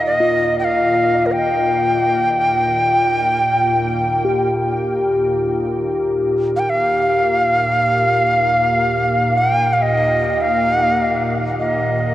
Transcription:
0, 0, Header, 1, 4, 480
1, 0, Start_track
1, 0, Key_signature, -3, "major"
1, 0, Tempo, 500000
1, 11659, End_track
2, 0, Start_track
2, 0, Title_t, "Native American-style wooden flute"
2, 0, Program_c, 0, 77
2, 62, Note_on_c, 0, 75, 67
2, 533, Note_off_c, 0, 75, 0
2, 572, Note_on_c, 0, 79, 54
2, 620, Note_on_c, 0, 77, 59
2, 629, Note_off_c, 0, 79, 0
2, 1210, Note_on_c, 0, 70, 44
2, 1224, Note_off_c, 0, 77, 0
2, 1268, Note_on_c, 0, 79, 75
2, 1282, Note_off_c, 0, 70, 0
2, 4503, Note_off_c, 0, 79, 0
2, 6299, Note_on_c, 0, 77, 70
2, 6327, Note_on_c, 0, 79, 60
2, 6342, Note_off_c, 0, 77, 0
2, 6427, Note_on_c, 0, 77, 86
2, 6441, Note_off_c, 0, 79, 0
2, 9002, Note_on_c, 0, 79, 74
2, 9016, Note_off_c, 0, 77, 0
2, 9344, Note_on_c, 0, 77, 43
2, 9358, Note_off_c, 0, 79, 0
2, 9430, Note_on_c, 0, 75, 68
2, 9444, Note_off_c, 0, 77, 0
2, 9999, Note_on_c, 0, 77, 84
2, 10013, Note_off_c, 0, 75, 0
2, 10884, Note_off_c, 0, 77, 0
2, 11132, Note_on_c, 0, 75, 69
2, 11659, Note_off_c, 0, 75, 0
2, 11659, End_track
3, 0, Start_track
3, 0, Title_t, "Singing bowl"
3, 0, Program_c, 1, 14
3, 196, Note_on_c, 1, 65, 48
3, 4075, Note_on_c, 1, 67, 46
3, 8536, Note_off_c, 1, 65, 0
3, 11659, Note_off_c, 1, 67, 0
3, 11659, End_track
4, 0, Start_track
4, 0, Title_t, "Ambient pad"
4, 0, Program_c, 2, 92
4, 0, Note_on_c, 2, 39, 53
4, 0, Note_on_c, 2, 46, 55
4, 2252, Note_off_c, 2, 46, 0
4, 2261, Note_off_c, 2, 39, 0
4, 2264, Note_on_c, 2, 46, 54
4, 2273, Note_on_c, 2, 39, 58
4, 11659, Note_off_c, 2, 39, 0
4, 11659, Note_off_c, 2, 46, 0
4, 11659, End_track
0, 0, End_of_file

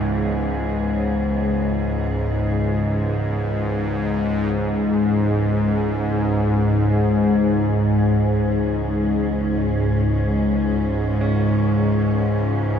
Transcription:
0, 0, Header, 1, 4, 480
1, 0, Start_track
1, 0, Key_signature, 4, "minor"
1, 0, Tempo, 500000
1, 12281, End_track
2, 0, Start_track
2, 0, Title_t, "Grand piano"
2, 0, Program_c, 0, 0
2, 4528, Control_c, 0, 64, 127
2, 10762, Note_on_c, 0, 61, 60
2, 12281, Note_off_c, 0, 61, 0
2, 12281, End_track
3, 0, Start_track
3, 0, Title_t, "Cello section"
3, 0, Program_c, 1, 48
3, 0, Note_on_c, 1, 37, 71
3, 0, Note_on_c, 1, 44, 62
3, 0, Note_on_c, 1, 52, 66
3, 0, Note_on_c, 1, 59, 55
3, 0, Note_on_c, 1, 68, 53
3, 4357, Note_off_c, 1, 37, 0
3, 6840, Note_on_c, 1, 61, 70
3, 7157, Note_off_c, 1, 59, 0
3, 12281, Note_off_c, 1, 44, 0
3, 12281, Note_off_c, 1, 52, 0
3, 12281, Note_off_c, 1, 61, 0
3, 12281, Note_off_c, 1, 68, 0
3, 12281, End_track
4, 0, Start_track
4, 0, Title_t, "Synth drone"
4, 0, Program_c, 2, 95
4, 0, Note_on_c, 2, 37, 66
4, 0, Note_on_c, 2, 44, 68
4, 4355, Note_off_c, 2, 44, 0
4, 4362, Note_off_c, 2, 37, 0
4, 4366, Note_on_c, 2, 44, 65
4, 4374, Note_on_c, 2, 37, 66
4, 12281, Note_off_c, 2, 37, 0
4, 12281, Note_off_c, 2, 44, 0
4, 12281, End_track
0, 0, End_of_file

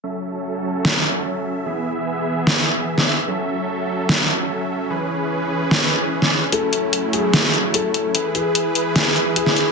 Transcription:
0, 0, Header, 1, 4, 480
1, 0, Start_track
1, 0, Key_signature, 3, "minor"
1, 0, Tempo, 405405
1, 45, Time_signature, 4, 2, 24, 8
1, 11507, End_track
2, 0, Start_track
2, 0, Title_t, "Grand piano"
2, 0, Program_c, 0, 0
2, 7725, Note_on_c, 0, 69, 90
2, 8349, Note_off_c, 0, 69, 0
2, 8446, Note_on_c, 0, 68, 86
2, 9069, Note_off_c, 0, 68, 0
2, 9165, Note_on_c, 0, 69, 92
2, 9789, Note_off_c, 0, 69, 0
2, 9885, Note_on_c, 0, 68, 88
2, 10509, Note_off_c, 0, 68, 0
2, 10605, Note_on_c, 0, 68, 78
2, 10948, Note_off_c, 0, 68, 0
2, 11083, Note_on_c, 0, 68, 83
2, 11428, Note_off_c, 0, 68, 0
2, 11507, End_track
3, 0, Start_track
3, 0, Title_t, "Supersaw synth"
3, 0, Program_c, 1, 81
3, 43, Note_on_c, 1, 54, 76
3, 43, Note_on_c, 1, 61, 70
3, 43, Note_on_c, 1, 76, 81
3, 44, Note_on_c, 1, 69, 66
3, 1944, Note_off_c, 1, 54, 0
3, 1945, Note_off_c, 1, 61, 0
3, 1945, Note_off_c, 1, 69, 0
3, 1962, Note_on_c, 1, 59, 72
3, 1963, Note_on_c, 1, 68, 70
3, 1964, Note_on_c, 1, 52, 75
3, 3864, Note_off_c, 1, 59, 0
3, 3865, Note_off_c, 1, 52, 0
3, 3865, Note_off_c, 1, 68, 0
3, 3884, Note_on_c, 1, 54, 76
3, 3884, Note_on_c, 1, 61, 70
3, 3884, Note_on_c, 1, 69, 71
3, 5756, Note_off_c, 1, 76, 0
3, 5785, Note_off_c, 1, 54, 0
3, 5785, Note_off_c, 1, 69, 0
3, 5805, Note_on_c, 1, 52, 75
3, 5805, Note_on_c, 1, 71, 84
3, 5806, Note_on_c, 1, 68, 73
3, 7706, Note_off_c, 1, 52, 0
3, 7706, Note_off_c, 1, 68, 0
3, 7706, Note_off_c, 1, 71, 0
3, 7724, Note_on_c, 1, 57, 84
3, 7725, Note_on_c, 1, 54, 76
3, 7725, Note_on_c, 1, 64, 68
3, 9597, Note_off_c, 1, 61, 0
3, 9625, Note_off_c, 1, 57, 0
3, 9626, Note_off_c, 1, 54, 0
3, 9626, Note_off_c, 1, 64, 0
3, 9644, Note_on_c, 1, 52, 77
3, 9644, Note_on_c, 1, 64, 73
3, 9644, Note_on_c, 1, 68, 71
3, 9644, Note_on_c, 1, 71, 86
3, 11507, Note_off_c, 1, 52, 0
3, 11507, Note_off_c, 1, 64, 0
3, 11507, Note_off_c, 1, 68, 0
3, 11507, Note_off_c, 1, 71, 0
3, 11507, End_track
4, 0, Start_track
4, 0, Title_t, "Drums"
4, 1004, Note_on_c, 9, 38, 117
4, 1123, Note_off_c, 9, 38, 0
4, 2924, Note_on_c, 9, 38, 113
4, 3042, Note_off_c, 9, 38, 0
4, 3525, Note_on_c, 9, 38, 36
4, 3643, Note_off_c, 9, 38, 0
4, 4844, Note_on_c, 9, 38, 118
4, 4962, Note_off_c, 9, 38, 0
4, 6764, Note_on_c, 9, 38, 112
4, 6882, Note_off_c, 9, 38, 0
4, 7365, Note_on_c, 9, 38, 35
4, 7484, Note_off_c, 9, 38, 0
4, 7725, Note_on_c, 9, 42, 69
4, 7843, Note_off_c, 9, 42, 0
4, 7965, Note_on_c, 9, 42, 44
4, 8083, Note_off_c, 9, 42, 0
4, 8204, Note_on_c, 9, 42, 67
4, 8323, Note_off_c, 9, 42, 0
4, 8445, Note_on_c, 9, 42, 46
4, 8563, Note_off_c, 9, 42, 0
4, 8685, Note_on_c, 9, 38, 116
4, 8685, Note_on_c, 9, 42, 72
4, 8803, Note_off_c, 9, 38, 0
4, 8803, Note_off_c, 9, 42, 0
4, 8925, Note_on_c, 9, 42, 45
4, 9043, Note_off_c, 9, 42, 0
4, 9165, Note_on_c, 9, 42, 71
4, 9283, Note_off_c, 9, 42, 0
4, 9405, Note_on_c, 9, 42, 47
4, 9523, Note_off_c, 9, 42, 0
4, 9645, Note_on_c, 9, 42, 69
4, 9763, Note_off_c, 9, 42, 0
4, 9885, Note_on_c, 9, 42, 48
4, 10004, Note_off_c, 9, 42, 0
4, 10125, Note_on_c, 9, 42, 73
4, 10243, Note_off_c, 9, 42, 0
4, 10364, Note_on_c, 9, 42, 50
4, 10482, Note_off_c, 9, 42, 0
4, 10605, Note_on_c, 9, 38, 110
4, 10605, Note_on_c, 9, 42, 77
4, 10723, Note_off_c, 9, 38, 0
4, 10723, Note_off_c, 9, 42, 0
4, 10845, Note_on_c, 9, 42, 47
4, 10963, Note_off_c, 9, 42, 0
4, 11085, Note_on_c, 9, 42, 72
4, 11203, Note_off_c, 9, 42, 0
4, 11205, Note_on_c, 9, 38, 33
4, 11323, Note_off_c, 9, 38, 0
4, 11324, Note_on_c, 9, 42, 50
4, 11443, Note_off_c, 9, 42, 0
4, 11507, End_track
0, 0, End_of_file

